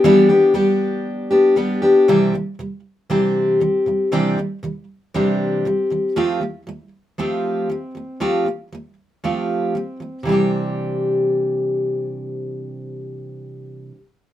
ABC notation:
X:1
M:4/4
L:1/8
Q:1/4=117
K:C
V:1 name="Steel-string acoustic guitar"
[E,G,B,DG] [B,DG] [G,B,DG]3 [B,DG] [G,B,DG] [B,DG] | [C,E,G,CDG] [C,E,G,] [C,E,G,] z [C,E,G,CDG]2 [C,E,G,] [C,E,G,] | [C,E,G,CDG] [C,E,G,] [C,E,G,] z [C,E,G,CDG]2 [C,E,G,] [C,E,G,] | [F,A,CFG] [F,A,] [F,A,] z [F,A,CFG]2 [F,A,] [F,A,] |
[F,A,CFG] [F,A,] [F,A,] z [F,A,CFG]2 [F,A,] [F,A,] | [C,E,G,CDG]8- | [C,E,G,CDG]8 |]